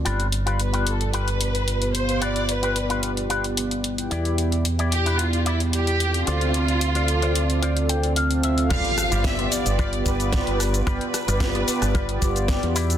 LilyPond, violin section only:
\new Staff \with { instrumentName = "Violin section" } { \time 4/4 \key g \mixolydian \tempo 4 = 111 r4 b'8 a'8 b'4. c''8 | d''8 b'4 r2 r8 | r4 g'8 f'8 e'8 g'4 f'8~ | f'2. r4 |
f''4 e''8 d''4 b'4. | b'2.~ b'8 r8 | }